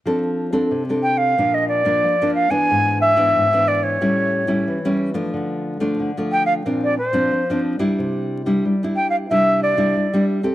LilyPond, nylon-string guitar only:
\new Staff \with { instrumentName = "Nylon-string guitar" } { \time 4/4 \key f \major \tempo 4 = 91 << { <c' d' a'>8. <c' d' a'>8 <c' d' a'>8. <f bes d'>8. <f bes d'>8 <f bes d'>8 <e b d'>16~ | <e b d'>8. <e b d'>8 <e b d'>8. <g cis' e'>8. <g cis' e'>8 <g cis' e'>8 <f a d'>16~ | <f a d'>8. <f a d'>8 <f a d'>8. <f c' d'>8 r16 <f c' d'>8 <f c' d'>8 <g d' e'>16~ | <g d' e'>8. <g d' e'>8 <g d' e'>8. <g d' e'>8. <g d' e'>8 <g d' e'>8 <c' g' a'>16 | } \\ { f4 c4 bes,4 f4 | gis,4 gis,4 a,4 e4 | d4 d4 bes,4 f4 | c4 g4 c4 g4 | } >> }